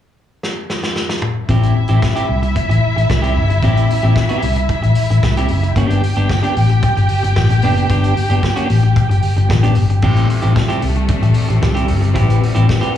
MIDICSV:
0, 0, Header, 1, 7, 480
1, 0, Start_track
1, 0, Key_signature, 0, "minor"
1, 0, Tempo, 533333
1, 1345, Time_signature, 4, 2, 24, 8
1, 11677, End_track
2, 0, Start_track
2, 0, Title_t, "String section"
2, 0, Program_c, 0, 48
2, 1334, Note_on_c, 0, 64, 68
2, 1336, Note_on_c, 0, 76, 81
2, 5145, Note_off_c, 0, 64, 0
2, 5146, Note_off_c, 0, 76, 0
2, 5187, Note_on_c, 0, 79, 88
2, 5192, Note_on_c, 0, 67, 71
2, 8991, Note_off_c, 0, 79, 0
2, 8994, Note_off_c, 0, 67, 0
2, 11677, End_track
3, 0, Start_track
3, 0, Title_t, "Clean electric guitar"
3, 0, Program_c, 1, 27
3, 1340, Note_on_c, 1, 60, 79
3, 1348, Note_on_c, 1, 64, 84
3, 1351, Note_on_c, 1, 67, 81
3, 1563, Note_off_c, 1, 60, 0
3, 1567, Note_off_c, 1, 64, 0
3, 1569, Note_off_c, 1, 67, 0
3, 1699, Note_on_c, 1, 67, 55
3, 1701, Note_on_c, 1, 64, 45
3, 1706, Note_on_c, 1, 60, 46
3, 1812, Note_off_c, 1, 60, 0
3, 1813, Note_off_c, 1, 64, 0
3, 1817, Note_off_c, 1, 67, 0
3, 1941, Note_on_c, 1, 67, 74
3, 1950, Note_on_c, 1, 64, 59
3, 1956, Note_on_c, 1, 60, 58
3, 2045, Note_off_c, 1, 60, 0
3, 2051, Note_off_c, 1, 64, 0
3, 2052, Note_off_c, 1, 67, 0
3, 2900, Note_on_c, 1, 67, 66
3, 2906, Note_on_c, 1, 64, 57
3, 2912, Note_on_c, 1, 60, 57
3, 3010, Note_off_c, 1, 60, 0
3, 3016, Note_off_c, 1, 64, 0
3, 3016, Note_off_c, 1, 67, 0
3, 3268, Note_on_c, 1, 60, 82
3, 3275, Note_on_c, 1, 64, 77
3, 3279, Note_on_c, 1, 67, 91
3, 3488, Note_off_c, 1, 60, 0
3, 3491, Note_off_c, 1, 64, 0
3, 3493, Note_off_c, 1, 67, 0
3, 3627, Note_on_c, 1, 67, 52
3, 3631, Note_on_c, 1, 64, 55
3, 3639, Note_on_c, 1, 60, 51
3, 3740, Note_off_c, 1, 60, 0
3, 3745, Note_off_c, 1, 64, 0
3, 3747, Note_off_c, 1, 67, 0
3, 3861, Note_on_c, 1, 67, 72
3, 3870, Note_on_c, 1, 64, 72
3, 3871, Note_on_c, 1, 60, 63
3, 3982, Note_off_c, 1, 60, 0
3, 3984, Note_off_c, 1, 64, 0
3, 3988, Note_off_c, 1, 67, 0
3, 4836, Note_on_c, 1, 67, 69
3, 4840, Note_on_c, 1, 64, 65
3, 4847, Note_on_c, 1, 60, 57
3, 4938, Note_off_c, 1, 60, 0
3, 4942, Note_off_c, 1, 64, 0
3, 4946, Note_off_c, 1, 67, 0
3, 5190, Note_on_c, 1, 59, 93
3, 5198, Note_on_c, 1, 62, 97
3, 5200, Note_on_c, 1, 67, 95
3, 5409, Note_off_c, 1, 59, 0
3, 5413, Note_off_c, 1, 62, 0
3, 5414, Note_off_c, 1, 67, 0
3, 5550, Note_on_c, 1, 67, 61
3, 5553, Note_on_c, 1, 62, 58
3, 5556, Note_on_c, 1, 59, 52
3, 5660, Note_off_c, 1, 59, 0
3, 5665, Note_off_c, 1, 62, 0
3, 5668, Note_off_c, 1, 67, 0
3, 5785, Note_on_c, 1, 67, 73
3, 5787, Note_on_c, 1, 62, 68
3, 5796, Note_on_c, 1, 59, 55
3, 5901, Note_off_c, 1, 59, 0
3, 5902, Note_off_c, 1, 62, 0
3, 5910, Note_off_c, 1, 67, 0
3, 6869, Note_on_c, 1, 59, 76
3, 6878, Note_on_c, 1, 62, 77
3, 6883, Note_on_c, 1, 67, 77
3, 6973, Note_off_c, 1, 67, 0
3, 6982, Note_off_c, 1, 62, 0
3, 6984, Note_on_c, 1, 67, 60
3, 6986, Note_off_c, 1, 59, 0
3, 6993, Note_on_c, 1, 62, 54
3, 6996, Note_on_c, 1, 59, 49
3, 7091, Note_off_c, 1, 59, 0
3, 7099, Note_off_c, 1, 62, 0
3, 7102, Note_on_c, 1, 59, 70
3, 7103, Note_off_c, 1, 67, 0
3, 7110, Note_on_c, 1, 62, 75
3, 7113, Note_on_c, 1, 67, 77
3, 7325, Note_off_c, 1, 59, 0
3, 7329, Note_off_c, 1, 62, 0
3, 7331, Note_off_c, 1, 67, 0
3, 7468, Note_on_c, 1, 67, 60
3, 7476, Note_on_c, 1, 62, 50
3, 7480, Note_on_c, 1, 59, 48
3, 7576, Note_off_c, 1, 59, 0
3, 7584, Note_off_c, 1, 62, 0
3, 7589, Note_off_c, 1, 67, 0
3, 7703, Note_on_c, 1, 67, 84
3, 7709, Note_on_c, 1, 62, 79
3, 7718, Note_on_c, 1, 59, 58
3, 7819, Note_off_c, 1, 59, 0
3, 7820, Note_off_c, 1, 62, 0
3, 7824, Note_off_c, 1, 67, 0
3, 8667, Note_on_c, 1, 67, 71
3, 8669, Note_on_c, 1, 62, 70
3, 8679, Note_on_c, 1, 59, 58
3, 8775, Note_off_c, 1, 59, 0
3, 8784, Note_off_c, 1, 62, 0
3, 8785, Note_off_c, 1, 67, 0
3, 9024, Note_on_c, 1, 60, 74
3, 9028, Note_on_c, 1, 64, 75
3, 9035, Note_on_c, 1, 67, 90
3, 9246, Note_off_c, 1, 60, 0
3, 9248, Note_off_c, 1, 64, 0
3, 9252, Note_off_c, 1, 67, 0
3, 9378, Note_on_c, 1, 67, 61
3, 9381, Note_on_c, 1, 64, 58
3, 9391, Note_on_c, 1, 60, 49
3, 9485, Note_off_c, 1, 60, 0
3, 9489, Note_off_c, 1, 64, 0
3, 9494, Note_off_c, 1, 67, 0
3, 9616, Note_on_c, 1, 67, 80
3, 9623, Note_on_c, 1, 64, 70
3, 9629, Note_on_c, 1, 60, 67
3, 9739, Note_off_c, 1, 60, 0
3, 9742, Note_off_c, 1, 64, 0
3, 9748, Note_off_c, 1, 67, 0
3, 10572, Note_on_c, 1, 67, 72
3, 10579, Note_on_c, 1, 64, 63
3, 10584, Note_on_c, 1, 60, 54
3, 10684, Note_off_c, 1, 60, 0
3, 10687, Note_off_c, 1, 64, 0
3, 10693, Note_off_c, 1, 67, 0
3, 10926, Note_on_c, 1, 60, 78
3, 10932, Note_on_c, 1, 64, 84
3, 10940, Note_on_c, 1, 67, 97
3, 11157, Note_off_c, 1, 60, 0
3, 11160, Note_off_c, 1, 64, 0
3, 11164, Note_off_c, 1, 67, 0
3, 11292, Note_on_c, 1, 67, 59
3, 11297, Note_on_c, 1, 64, 64
3, 11301, Note_on_c, 1, 60, 55
3, 11405, Note_off_c, 1, 60, 0
3, 11407, Note_off_c, 1, 64, 0
3, 11412, Note_off_c, 1, 67, 0
3, 11530, Note_on_c, 1, 67, 92
3, 11537, Note_on_c, 1, 64, 68
3, 11540, Note_on_c, 1, 60, 66
3, 11643, Note_off_c, 1, 60, 0
3, 11647, Note_off_c, 1, 67, 0
3, 11649, Note_off_c, 1, 64, 0
3, 11677, End_track
4, 0, Start_track
4, 0, Title_t, "String section"
4, 0, Program_c, 2, 48
4, 9021, Note_on_c, 2, 57, 62
4, 9022, Note_on_c, 2, 48, 68
4, 9022, Note_on_c, 2, 55, 60
4, 10924, Note_off_c, 2, 57, 0
4, 10948, Note_on_c, 2, 59, 71
4, 11677, Note_off_c, 2, 48, 0
4, 11677, Note_off_c, 2, 55, 0
4, 11677, Note_off_c, 2, 59, 0
4, 11677, End_track
5, 0, Start_track
5, 0, Title_t, "Fingered electric bass"
5, 0, Program_c, 3, 33
5, 1339, Note_on_c, 3, 33, 82
5, 1542, Note_off_c, 3, 33, 0
5, 1705, Note_on_c, 3, 33, 82
5, 1805, Note_off_c, 3, 33, 0
5, 2063, Note_on_c, 3, 36, 81
5, 2265, Note_off_c, 3, 36, 0
5, 2418, Note_on_c, 3, 33, 80
5, 2521, Note_off_c, 3, 33, 0
5, 2665, Note_on_c, 3, 33, 78
5, 2766, Note_off_c, 3, 33, 0
5, 2789, Note_on_c, 3, 36, 92
5, 3024, Note_on_c, 3, 31, 79
5, 3037, Note_off_c, 3, 36, 0
5, 3225, Note_off_c, 3, 31, 0
5, 3263, Note_on_c, 3, 33, 95
5, 3465, Note_off_c, 3, 33, 0
5, 3628, Note_on_c, 3, 33, 88
5, 3728, Note_off_c, 3, 33, 0
5, 3988, Note_on_c, 3, 36, 76
5, 4188, Note_off_c, 3, 36, 0
5, 4350, Note_on_c, 3, 33, 87
5, 4449, Note_off_c, 3, 33, 0
5, 4592, Note_on_c, 3, 33, 83
5, 4690, Note_off_c, 3, 33, 0
5, 4708, Note_on_c, 3, 36, 83
5, 4908, Note_off_c, 3, 36, 0
5, 4949, Note_on_c, 3, 30, 82
5, 5149, Note_off_c, 3, 30, 0
5, 5183, Note_on_c, 3, 31, 101
5, 5385, Note_off_c, 3, 31, 0
5, 5548, Note_on_c, 3, 31, 94
5, 5648, Note_off_c, 3, 31, 0
5, 5913, Note_on_c, 3, 33, 76
5, 6111, Note_off_c, 3, 33, 0
5, 6275, Note_on_c, 3, 31, 87
5, 6372, Note_off_c, 3, 31, 0
5, 6510, Note_on_c, 3, 31, 80
5, 6609, Note_off_c, 3, 31, 0
5, 6630, Note_on_c, 3, 33, 95
5, 6830, Note_off_c, 3, 33, 0
5, 6872, Note_on_c, 3, 30, 84
5, 7070, Note_off_c, 3, 30, 0
5, 7108, Note_on_c, 3, 31, 91
5, 7309, Note_off_c, 3, 31, 0
5, 7466, Note_on_c, 3, 31, 81
5, 7567, Note_off_c, 3, 31, 0
5, 7832, Note_on_c, 3, 33, 87
5, 8031, Note_off_c, 3, 33, 0
5, 8187, Note_on_c, 3, 31, 79
5, 8287, Note_off_c, 3, 31, 0
5, 8427, Note_on_c, 3, 31, 88
5, 8528, Note_off_c, 3, 31, 0
5, 8551, Note_on_c, 3, 33, 104
5, 8750, Note_off_c, 3, 33, 0
5, 8787, Note_on_c, 3, 31, 96
5, 8988, Note_off_c, 3, 31, 0
5, 9023, Note_on_c, 3, 33, 108
5, 9226, Note_off_c, 3, 33, 0
5, 9392, Note_on_c, 3, 33, 87
5, 9490, Note_off_c, 3, 33, 0
5, 9746, Note_on_c, 3, 36, 85
5, 9947, Note_off_c, 3, 36, 0
5, 10101, Note_on_c, 3, 33, 81
5, 10204, Note_off_c, 3, 33, 0
5, 10347, Note_on_c, 3, 33, 83
5, 10447, Note_off_c, 3, 33, 0
5, 10463, Note_on_c, 3, 36, 98
5, 10701, Note_on_c, 3, 31, 94
5, 10715, Note_off_c, 3, 36, 0
5, 10904, Note_off_c, 3, 31, 0
5, 10944, Note_on_c, 3, 33, 97
5, 11145, Note_off_c, 3, 33, 0
5, 11309, Note_on_c, 3, 33, 100
5, 11408, Note_off_c, 3, 33, 0
5, 11677, End_track
6, 0, Start_track
6, 0, Title_t, "Muted clean electric guitar strokes"
6, 1579, Note_on_c, 9, 29, 37
6, 1669, Note_off_c, 9, 29, 0
6, 1823, Note_on_c, 9, 29, 51
6, 1913, Note_off_c, 9, 29, 0
6, 2056, Note_on_c, 9, 29, 39
6, 2146, Note_off_c, 9, 29, 0
6, 2183, Note_on_c, 9, 29, 44
6, 2273, Note_off_c, 9, 29, 0
6, 2301, Note_on_c, 9, 29, 35
6, 2391, Note_off_c, 9, 29, 0
6, 2425, Note_on_c, 9, 29, 53
6, 2515, Note_off_c, 9, 29, 0
6, 2667, Note_on_c, 9, 29, 45
6, 2757, Note_off_c, 9, 29, 0
6, 2786, Note_on_c, 9, 29, 45
6, 2876, Note_off_c, 9, 29, 0
6, 3021, Note_on_c, 9, 29, 35
6, 3111, Note_off_c, 9, 29, 0
6, 3147, Note_on_c, 9, 29, 40
6, 3237, Note_off_c, 9, 29, 0
6, 3511, Note_on_c, 9, 29, 40
6, 3601, Note_off_c, 9, 29, 0
6, 3751, Note_on_c, 9, 29, 36
6, 3841, Note_off_c, 9, 29, 0
6, 3992, Note_on_c, 9, 29, 44
6, 4082, Note_off_c, 9, 29, 0
6, 4110, Note_on_c, 9, 29, 37
6, 4200, Note_off_c, 9, 29, 0
6, 4223, Note_on_c, 9, 29, 32
6, 4313, Note_off_c, 9, 29, 0
6, 4342, Note_on_c, 9, 29, 46
6, 4432, Note_off_c, 9, 29, 0
6, 4594, Note_on_c, 9, 29, 46
6, 4684, Note_off_c, 9, 29, 0
6, 4713, Note_on_c, 9, 29, 39
6, 4803, Note_off_c, 9, 29, 0
6, 4948, Note_on_c, 9, 29, 41
6, 5038, Note_off_c, 9, 29, 0
6, 5070, Note_on_c, 9, 29, 48
6, 5160, Note_off_c, 9, 29, 0
6, 5435, Note_on_c, 9, 29, 38
6, 5525, Note_off_c, 9, 29, 0
6, 5671, Note_on_c, 9, 29, 35
6, 5761, Note_off_c, 9, 29, 0
6, 5912, Note_on_c, 9, 29, 38
6, 6002, Note_off_c, 9, 29, 0
6, 6028, Note_on_c, 9, 29, 47
6, 6118, Note_off_c, 9, 29, 0
6, 6150, Note_on_c, 9, 29, 44
6, 6240, Note_off_c, 9, 29, 0
6, 6274, Note_on_c, 9, 29, 39
6, 6364, Note_off_c, 9, 29, 0
6, 6507, Note_on_c, 9, 29, 41
6, 6597, Note_off_c, 9, 29, 0
6, 6629, Note_on_c, 9, 29, 37
6, 6719, Note_off_c, 9, 29, 0
6, 6748, Note_on_c, 9, 29, 38
6, 6838, Note_off_c, 9, 29, 0
6, 7348, Note_on_c, 9, 29, 40
6, 7438, Note_off_c, 9, 29, 0
6, 7600, Note_on_c, 9, 29, 44
6, 7690, Note_off_c, 9, 29, 0
6, 7830, Note_on_c, 9, 29, 42
6, 7920, Note_off_c, 9, 29, 0
6, 7948, Note_on_c, 9, 29, 42
6, 8038, Note_off_c, 9, 29, 0
6, 8065, Note_on_c, 9, 29, 38
6, 8155, Note_off_c, 9, 29, 0
6, 8185, Note_on_c, 9, 29, 54
6, 8275, Note_off_c, 9, 29, 0
6, 8430, Note_on_c, 9, 29, 34
6, 8520, Note_off_c, 9, 29, 0
6, 8540, Note_on_c, 9, 29, 35
6, 8630, Note_off_c, 9, 29, 0
6, 8786, Note_on_c, 9, 29, 30
6, 8876, Note_off_c, 9, 29, 0
6, 8910, Note_on_c, 9, 29, 51
6, 9000, Note_off_c, 9, 29, 0
6, 9261, Note_on_c, 9, 29, 49
6, 9351, Note_off_c, 9, 29, 0
6, 9496, Note_on_c, 9, 29, 49
6, 9586, Note_off_c, 9, 29, 0
6, 9749, Note_on_c, 9, 29, 38
6, 9839, Note_off_c, 9, 29, 0
6, 9865, Note_on_c, 9, 29, 40
6, 9955, Note_off_c, 9, 29, 0
6, 9985, Note_on_c, 9, 29, 51
6, 10075, Note_off_c, 9, 29, 0
6, 10103, Note_on_c, 9, 29, 51
6, 10193, Note_off_c, 9, 29, 0
6, 10337, Note_on_c, 9, 29, 44
6, 10427, Note_off_c, 9, 29, 0
6, 10457, Note_on_c, 9, 29, 47
6, 10547, Note_off_c, 9, 29, 0
6, 10695, Note_on_c, 9, 29, 47
6, 10785, Note_off_c, 9, 29, 0
6, 10810, Note_on_c, 9, 29, 48
6, 10900, Note_off_c, 9, 29, 0
6, 11173, Note_on_c, 9, 29, 37
6, 11263, Note_off_c, 9, 29, 0
6, 11677, End_track
7, 0, Start_track
7, 0, Title_t, "Drums"
7, 390, Note_on_c, 9, 38, 60
7, 480, Note_off_c, 9, 38, 0
7, 628, Note_on_c, 9, 38, 74
7, 718, Note_off_c, 9, 38, 0
7, 749, Note_on_c, 9, 38, 84
7, 839, Note_off_c, 9, 38, 0
7, 863, Note_on_c, 9, 38, 71
7, 953, Note_off_c, 9, 38, 0
7, 985, Note_on_c, 9, 38, 88
7, 1075, Note_off_c, 9, 38, 0
7, 1098, Note_on_c, 9, 45, 96
7, 1188, Note_off_c, 9, 45, 0
7, 1338, Note_on_c, 9, 42, 61
7, 1339, Note_on_c, 9, 36, 85
7, 1428, Note_off_c, 9, 42, 0
7, 1429, Note_off_c, 9, 36, 0
7, 1469, Note_on_c, 9, 42, 42
7, 1559, Note_off_c, 9, 42, 0
7, 1689, Note_on_c, 9, 42, 41
7, 1779, Note_off_c, 9, 42, 0
7, 1822, Note_on_c, 9, 36, 97
7, 1825, Note_on_c, 9, 38, 85
7, 1912, Note_off_c, 9, 36, 0
7, 1915, Note_off_c, 9, 38, 0
7, 1946, Note_on_c, 9, 42, 49
7, 2036, Note_off_c, 9, 42, 0
7, 2184, Note_on_c, 9, 42, 36
7, 2274, Note_off_c, 9, 42, 0
7, 2303, Note_on_c, 9, 36, 91
7, 2308, Note_on_c, 9, 42, 51
7, 2393, Note_off_c, 9, 36, 0
7, 2398, Note_off_c, 9, 42, 0
7, 2437, Note_on_c, 9, 42, 47
7, 2527, Note_off_c, 9, 42, 0
7, 2680, Note_on_c, 9, 42, 41
7, 2770, Note_off_c, 9, 42, 0
7, 2788, Note_on_c, 9, 36, 95
7, 2794, Note_on_c, 9, 38, 109
7, 2878, Note_off_c, 9, 36, 0
7, 2884, Note_off_c, 9, 38, 0
7, 2912, Note_on_c, 9, 42, 45
7, 3002, Note_off_c, 9, 42, 0
7, 3150, Note_on_c, 9, 42, 38
7, 3240, Note_off_c, 9, 42, 0
7, 3263, Note_on_c, 9, 36, 84
7, 3264, Note_on_c, 9, 42, 57
7, 3353, Note_off_c, 9, 36, 0
7, 3354, Note_off_c, 9, 42, 0
7, 3394, Note_on_c, 9, 42, 41
7, 3484, Note_off_c, 9, 42, 0
7, 3513, Note_on_c, 9, 46, 67
7, 3603, Note_off_c, 9, 46, 0
7, 3617, Note_on_c, 9, 42, 40
7, 3707, Note_off_c, 9, 42, 0
7, 3742, Note_on_c, 9, 36, 94
7, 3747, Note_on_c, 9, 38, 83
7, 3832, Note_off_c, 9, 36, 0
7, 3837, Note_off_c, 9, 38, 0
7, 3861, Note_on_c, 9, 42, 45
7, 3951, Note_off_c, 9, 42, 0
7, 3980, Note_on_c, 9, 46, 68
7, 4070, Note_off_c, 9, 46, 0
7, 4101, Note_on_c, 9, 42, 38
7, 4191, Note_off_c, 9, 42, 0
7, 4221, Note_on_c, 9, 42, 48
7, 4222, Note_on_c, 9, 36, 97
7, 4311, Note_off_c, 9, 42, 0
7, 4312, Note_off_c, 9, 36, 0
7, 4351, Note_on_c, 9, 42, 44
7, 4441, Note_off_c, 9, 42, 0
7, 4456, Note_on_c, 9, 46, 65
7, 4546, Note_off_c, 9, 46, 0
7, 4599, Note_on_c, 9, 42, 45
7, 4689, Note_off_c, 9, 42, 0
7, 4707, Note_on_c, 9, 36, 92
7, 4709, Note_on_c, 9, 38, 96
7, 4797, Note_off_c, 9, 36, 0
7, 4799, Note_off_c, 9, 38, 0
7, 4834, Note_on_c, 9, 42, 48
7, 4924, Note_off_c, 9, 42, 0
7, 4935, Note_on_c, 9, 46, 54
7, 5025, Note_off_c, 9, 46, 0
7, 5071, Note_on_c, 9, 42, 38
7, 5161, Note_off_c, 9, 42, 0
7, 5184, Note_on_c, 9, 36, 97
7, 5186, Note_on_c, 9, 42, 63
7, 5274, Note_off_c, 9, 36, 0
7, 5276, Note_off_c, 9, 42, 0
7, 5313, Note_on_c, 9, 42, 46
7, 5403, Note_off_c, 9, 42, 0
7, 5431, Note_on_c, 9, 46, 60
7, 5521, Note_off_c, 9, 46, 0
7, 5541, Note_on_c, 9, 42, 44
7, 5631, Note_off_c, 9, 42, 0
7, 5665, Note_on_c, 9, 36, 94
7, 5671, Note_on_c, 9, 38, 82
7, 5755, Note_off_c, 9, 36, 0
7, 5761, Note_off_c, 9, 38, 0
7, 5791, Note_on_c, 9, 42, 44
7, 5881, Note_off_c, 9, 42, 0
7, 5909, Note_on_c, 9, 46, 59
7, 5999, Note_off_c, 9, 46, 0
7, 6023, Note_on_c, 9, 42, 33
7, 6113, Note_off_c, 9, 42, 0
7, 6145, Note_on_c, 9, 36, 104
7, 6148, Note_on_c, 9, 42, 57
7, 6235, Note_off_c, 9, 36, 0
7, 6238, Note_off_c, 9, 42, 0
7, 6274, Note_on_c, 9, 42, 41
7, 6364, Note_off_c, 9, 42, 0
7, 6378, Note_on_c, 9, 46, 66
7, 6468, Note_off_c, 9, 46, 0
7, 6517, Note_on_c, 9, 42, 45
7, 6607, Note_off_c, 9, 42, 0
7, 6625, Note_on_c, 9, 38, 96
7, 6627, Note_on_c, 9, 36, 99
7, 6715, Note_off_c, 9, 38, 0
7, 6717, Note_off_c, 9, 36, 0
7, 6751, Note_on_c, 9, 42, 51
7, 6841, Note_off_c, 9, 42, 0
7, 6857, Note_on_c, 9, 46, 60
7, 6947, Note_off_c, 9, 46, 0
7, 6994, Note_on_c, 9, 42, 41
7, 7084, Note_off_c, 9, 42, 0
7, 7105, Note_on_c, 9, 42, 67
7, 7107, Note_on_c, 9, 36, 97
7, 7195, Note_off_c, 9, 42, 0
7, 7197, Note_off_c, 9, 36, 0
7, 7234, Note_on_c, 9, 42, 49
7, 7324, Note_off_c, 9, 42, 0
7, 7352, Note_on_c, 9, 46, 61
7, 7442, Note_off_c, 9, 46, 0
7, 7467, Note_on_c, 9, 42, 47
7, 7557, Note_off_c, 9, 42, 0
7, 7588, Note_on_c, 9, 36, 94
7, 7598, Note_on_c, 9, 38, 86
7, 7678, Note_off_c, 9, 36, 0
7, 7688, Note_off_c, 9, 38, 0
7, 7711, Note_on_c, 9, 42, 47
7, 7801, Note_off_c, 9, 42, 0
7, 7827, Note_on_c, 9, 46, 61
7, 7917, Note_off_c, 9, 46, 0
7, 7947, Note_on_c, 9, 42, 35
7, 8037, Note_off_c, 9, 42, 0
7, 8066, Note_on_c, 9, 36, 103
7, 8067, Note_on_c, 9, 42, 53
7, 8156, Note_off_c, 9, 36, 0
7, 8157, Note_off_c, 9, 42, 0
7, 8198, Note_on_c, 9, 42, 46
7, 8288, Note_off_c, 9, 42, 0
7, 8301, Note_on_c, 9, 46, 56
7, 8391, Note_off_c, 9, 46, 0
7, 8440, Note_on_c, 9, 42, 49
7, 8530, Note_off_c, 9, 42, 0
7, 8550, Note_on_c, 9, 36, 95
7, 8555, Note_on_c, 9, 38, 117
7, 8640, Note_off_c, 9, 36, 0
7, 8645, Note_off_c, 9, 38, 0
7, 8672, Note_on_c, 9, 42, 46
7, 8762, Note_off_c, 9, 42, 0
7, 8774, Note_on_c, 9, 46, 56
7, 8864, Note_off_c, 9, 46, 0
7, 8908, Note_on_c, 9, 42, 37
7, 8998, Note_off_c, 9, 42, 0
7, 9020, Note_on_c, 9, 49, 87
7, 9024, Note_on_c, 9, 36, 102
7, 9110, Note_off_c, 9, 49, 0
7, 9114, Note_off_c, 9, 36, 0
7, 9149, Note_on_c, 9, 42, 48
7, 9239, Note_off_c, 9, 42, 0
7, 9269, Note_on_c, 9, 46, 60
7, 9359, Note_off_c, 9, 46, 0
7, 9378, Note_on_c, 9, 42, 44
7, 9468, Note_off_c, 9, 42, 0
7, 9504, Note_on_c, 9, 36, 108
7, 9512, Note_on_c, 9, 38, 91
7, 9594, Note_off_c, 9, 36, 0
7, 9602, Note_off_c, 9, 38, 0
7, 9626, Note_on_c, 9, 42, 48
7, 9716, Note_off_c, 9, 42, 0
7, 9738, Note_on_c, 9, 46, 60
7, 9828, Note_off_c, 9, 46, 0
7, 9860, Note_on_c, 9, 42, 40
7, 9950, Note_off_c, 9, 42, 0
7, 9975, Note_on_c, 9, 42, 60
7, 9979, Note_on_c, 9, 36, 113
7, 10065, Note_off_c, 9, 42, 0
7, 10069, Note_off_c, 9, 36, 0
7, 10103, Note_on_c, 9, 42, 44
7, 10193, Note_off_c, 9, 42, 0
7, 10207, Note_on_c, 9, 46, 65
7, 10297, Note_off_c, 9, 46, 0
7, 10349, Note_on_c, 9, 42, 50
7, 10439, Note_off_c, 9, 42, 0
7, 10464, Note_on_c, 9, 36, 106
7, 10464, Note_on_c, 9, 38, 112
7, 10554, Note_off_c, 9, 36, 0
7, 10554, Note_off_c, 9, 38, 0
7, 10587, Note_on_c, 9, 42, 52
7, 10677, Note_off_c, 9, 42, 0
7, 10692, Note_on_c, 9, 46, 64
7, 10782, Note_off_c, 9, 46, 0
7, 10831, Note_on_c, 9, 42, 42
7, 10921, Note_off_c, 9, 42, 0
7, 10940, Note_on_c, 9, 42, 69
7, 10941, Note_on_c, 9, 36, 101
7, 11030, Note_off_c, 9, 42, 0
7, 11031, Note_off_c, 9, 36, 0
7, 11069, Note_on_c, 9, 42, 48
7, 11159, Note_off_c, 9, 42, 0
7, 11190, Note_on_c, 9, 46, 65
7, 11280, Note_off_c, 9, 46, 0
7, 11299, Note_on_c, 9, 42, 49
7, 11389, Note_off_c, 9, 42, 0
7, 11423, Note_on_c, 9, 36, 98
7, 11428, Note_on_c, 9, 38, 99
7, 11513, Note_off_c, 9, 36, 0
7, 11518, Note_off_c, 9, 38, 0
7, 11544, Note_on_c, 9, 42, 47
7, 11634, Note_off_c, 9, 42, 0
7, 11677, End_track
0, 0, End_of_file